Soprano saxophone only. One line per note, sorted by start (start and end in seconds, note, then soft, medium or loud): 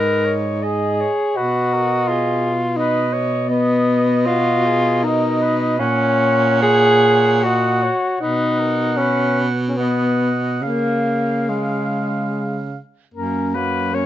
0.00 0.27 B4 soft
0.25 0.64 C#5 soft
0.63 1.02 D#5 medium
1.00 1.38 C#5 soft
1.37 1.75 B4 soft
1.73 2.11 A#4 soft
2.10 2.54 G#4 soft
2.78 3.14 B4 medium
3.13 3.50 C#5 medium
3.48 4.30 D#5 soft
4.28 4.67 F#4 medium
4.66 5.05 G#4 medium
5.04 5.44 A#4 medium
5.42 5.80 B4 soft
5.81 7.47 C#5 medium
7.45 7.84 D#5 medium
7.83 8.20 C#5 medium
8.22 8.61 B4 soft
8.59 9.02 A#4 soft
9.01 9.51 B4 soft
9.78 10.64 D#5 soft
10.63 12.73 F5 soft
13.15 13.56 A#4 medium
13.54 13.96 B4 medium
13.94 14.06 C#5 medium